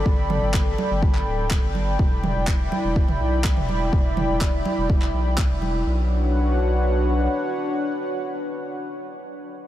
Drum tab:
CP |----x----x--x---|----x-------x---|----x----x--x---|----------------|
T2 |--o-------------|--o------o---o--|--o-------------|----------------|
CG |--o---o-------o-|--o---o-------o-|--o---o-------o-|----------------|
BD |o---o---o---o---|o---o---o---o---|o---o---o---o---|----------------|

CP |----------------|
T2 |----------------|
CG |----------------|
BD |----------------|